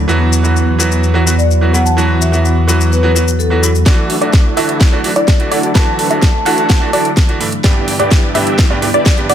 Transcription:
Already playing: F#3
0.08 E2 E3 F#3 B3 F#4, shaker
0.33 shaker
0.43 E3 F#3 B3 F#4, shaker
0.56 shaker
0.78 E3 F#3 B3 F#4, shaker
0.92 shaker
1.03 shaker
1.14 E3 F#3 B3 F#4
1.26 E3 F#3 B3 F#4, shaker
1.38 D5, shaker
1.51 shaker
1.61 E3 F#3 B3 F#4
1.73 E3 F#3 B3 E4 F#5, shaker
1.85 A5, shaker
1.97 E3 F#3 B3 F#4, shaker
2.21 E5, shaker
2.32 E3 F#3 B3 F#4, shaker
2.45 shaker
2.67 E3 F#3 B3 F#4, shaker
2.81 shaker
2.92 B4, shaker
3.03 E3 F#3 B3 F#4
3.15 E3 F#3 B3 F#4, shaker
3.28 shaker
3.39 A4, shaker
3.50 E3 F#3 B3 F#4
3.62 E3 F#3 B3 E4, shaker
3.75 shaker
3.86 D2 D3 E3 F#3 A3 D4 E4 F#4 A4 D5, kick, snare, closed hi-hat
4.10 open hi-hat
4.21 D2 E3 A3 D4 E4 F#4 A4 D5, closed hi-hat
4.33 kick, snare, closed hi-hat
4.56 D2 E3 A3 D4 E4 F#4 A4 E5, open hi-hat
4.69 closed hi-hat
4.81 kick, snare, closed hi-hat
4.92 D2 E3 A3 D4 E4 F#4 A4 D5
5.04 E3 A3 D4 F#4, open hi-hat
5.16 D2 D4 E4 F#4 A4 D5, closed hi-hat
5.28 kick, snare, closed hi-hat
5.39 E3 A3 D4 F#4, closed hi-hat
5.51 D2 E3 A3 D4 E4 F#4 A4 D5 F#5, open hi-hat
5.63 A5, closed hi-hat
5.74 D2 E3 A3 D4 F#4 B4 A5, kick, snare, closed hi-hat
5.99 A5, open hi-hat
6.10 D2 E3 A3 D4 E4 F#4 A4 E5, closed hi-hat
6.22 kick, snare, closed hi-hat
6.45 D2 E3 A3 D4 E4 F#4 A4 F#5 A5, open hi-hat
6.58 A5, closed hi-hat
6.70 D2 F#5, kick, snare, closed hi-hat
6.81 E3 A3 D4 F#4
6.93 D2 E3 A3 D4 E4 F#4 A4 D5, open hi-hat
7.05 closed hi-hat
7.17 kick, snare, closed hi-hat
7.28 E3 A3 D4 F#4, closed hi-hat
7.40 G2 E3 A3 D4 E4, open hi-hat
7.52 closed hi-hat
7.64 G1 G2 E3 G3 B3 D4 E4 G4 B4 D5, kick, snare, closed hi-hat
7.88 open hi-hat
7.99 G1 G2 E3 B3 D4 E4 G4 B4 D5, closed hi-hat
8.11 kick, snare, closed hi-hat
8.34 G1 G2 E3 B3 D4 E4 G4 B4 E5, open hi-hat
8.47 closed hi-hat
8.59 kick, snare, closed hi-hat
8.70 G1 G2 E3 B3 D4 E4 G4 B4 D5
8.82 G2 E3 B3 D4 G4, open hi-hat
8.94 G1 D4 E4 G4 B4 D5, closed hi-hat
9.06 kick, snare, closed hi-hat
9.17 G2 E3 B3 D4 G4, closed hi-hat
9.29 G1 G2 E3 B3 D4 E4 G4 B4 D5 F#5, open hi-hat

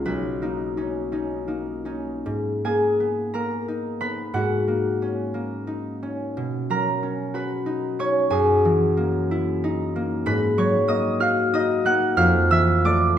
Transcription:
Already playing: B3 D#4 C#5 D#5
0.05 B1 B4
0.42 A#3 D#4
0.77 C#4 D#4
1.12 C#4 D#4
1.48 A#3 D#4
1.85 C#4 D#4
2.26 G#2
2.65 A#3 G#4 G#5
3.00 B3
3.34 A#3 A#4 A#5
3.68 D#4
4.01 B3 B4 B5
4.34 G#2 F#4 F#5
4.68 A#3
5.02 C#4
5.34 A#3
5.67 D#4
6.03 C#4
6.37 B2
6.70 F#3 A#4 A#5
7.03 C#4
7.34 F#4 B4 B5
7.66 D#4
7.99 C#4 C#5 C#6
8.30 F#2 G#4 G#5
8.65 E3
8.97 A#3
9.31 E4
9.64 D#4
9.96 A#3
10.26 G#2 B4 B5
10.58 F#3 C#5 C#6
10.88 A#3 D#5 D#6
11.20 F#4 F5 F6
11.54 D#4 D#5 D#6
11.85 A#3 F#5 F#6
12.17 F2 F5 F6
12.50 E3 E5 E6
12.85 A3 D5 D6

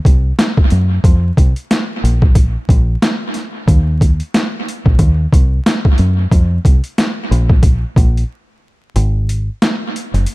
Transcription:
0.05 C2, kick, closed hi-hat
0.39 snare, closed hi-hat
0.57 kick
0.70 F#2, closed hi-hat
1.04 F2, kick, closed hi-hat
1.37 C2, kick, closed hi-hat
1.56 closed hi-hat
1.71 snare, closed hi-hat
2.04 A#1, closed hi-hat
2.22 kick
2.35 kick, closed hi-hat
2.69 A#1, kick, closed hi-hat
3.02 snare, closed hi-hat
3.34 snare, closed hi-hat
3.68 D#2, kick, closed hi-hat
4.01 kick, closed hi-hat
4.20 closed hi-hat
4.34 snare, closed hi-hat
4.68 closed hi-hat
4.86 A#1, kick
4.99 D#2, kick, closed hi-hat
5.33 C2, kick, closed hi-hat
5.66 snare, closed hi-hat
5.85 kick
5.98 F#2, closed hi-hat
6.31 F2, kick, closed hi-hat
6.65 C2, kick, closed hi-hat
6.84 closed hi-hat
6.98 snare, closed hi-hat
7.31 A#1, closed hi-hat
7.50 kick
7.63 kick, closed hi-hat
7.96 A#1, kick, closed hi-hat
8.17 closed hi-hat
8.96 G#1, closed hi-hat
9.29 closed hi-hat
9.62 snare, closed hi-hat
9.96 closed hi-hat
10.14 F#1, closed hi-hat
10.26 closed hi-hat

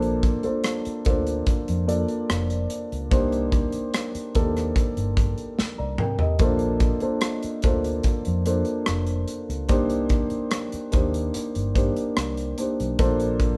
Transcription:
Already playing: A#1 A#3 D4 F4 A4 C5
0.02 closed hi-hat
0.23 kick, closed hi-hat
0.43 A#3 D4 F4 A4 C5, muted fingered electric bass stroke, closed hi-hat
0.64 cross-stick, closed hi-hat
0.85 muted fingered electric bass stroke, closed hi-hat
1.05 D2 A#3 D4 F4 A4 C5, kick, closed hi-hat
1.27 closed hi-hat
1.47 muted fingered electric bass stroke, kick, closed hi-hat
1.68 F2, closed hi-hat
1.87 A#3 D4 F4 A4 D5, closed hi-hat
2.08 closed hi-hat
2.30 F1, cross-stick, closed hi-hat
2.50 closed hi-hat
2.70 closed hi-hat
2.92 C#2, closed hi-hat
3.11 C2 A#3 D4 D#4 G4 C5, kick, closed hi-hat
3.32 closed hi-hat
3.52 kick, closed hi-hat
3.72 muted fingered electric bass stroke, closed hi-hat
3.94 cross-stick, closed hi-hat
4.15 muted fingered electric bass stroke, closed hi-hat
4.35 D#2 A#3 D4 D#4 G4 A4, kick, closed hi-hat
4.57 cross-stick, closed hi-hat
4.76 muted fingered electric bass stroke, kick, closed hi-hat
4.97 G1, closed hi-hat
5.17 kick, closed hi-hat
5.38 closed hi-hat
5.59 muted fingered electric bass stroke, snare
5.78 C2 D5 A#5
5.98 C3 A#4 G5, mid tom
6.19 G4 D#5, floor tom
6.39 A#1 A#3 D4 F4 A4 C5, kick, closed hi-hat
6.59 closed hi-hat
6.80 kick, closed hi-hat
7.00 A#3 D4 F4 A4 C5, muted fingered electric bass stroke, closed hi-hat
7.21 cross-stick, closed hi-hat
7.43 muted fingered electric bass stroke, closed hi-hat
7.62 D2 A#3 D4 F4 A4 C5, kick, closed hi-hat
7.84 closed hi-hat
8.03 muted fingered electric bass stroke, kick, closed hi-hat
8.25 F2, closed hi-hat
8.45 A#3 D4 F4 A4 C5, closed hi-hat
8.65 closed hi-hat
8.86 F1, cross-stick, closed hi-hat
9.07 closed hi-hat
9.28 closed hi-hat
9.49 C#2, closed hi-hat
9.68 C2 A#3 D4 D#4 G4 C5, kick, closed hi-hat
9.90 closed hi-hat
10.09 kick, closed hi-hat
10.30 muted fingered electric bass stroke, closed hi-hat
10.51 cross-stick, closed hi-hat
10.72 muted fingered electric bass stroke, closed hi-hat
10.92 D#2 A#3 D4 D#4 G4 C5, kick, closed hi-hat
11.14 closed hi-hat
11.34 muted fingered electric bass stroke, closed hi-hat
11.55 G1, closed hi-hat
11.74 A#3 D4 D#4 G4 C5, kick, closed hi-hat
11.96 closed hi-hat
12.17 C2, cross-stick, closed hi-hat
12.37 closed hi-hat
12.58 A#3 D4 D#4 G4 C5, closed hi-hat
12.80 B1, closed hi-hat
12.99 A#1 A#3 D4 F4 A4 C5, kick, closed hi-hat
13.20 closed hi-hat
13.40 kick, closed hi-hat

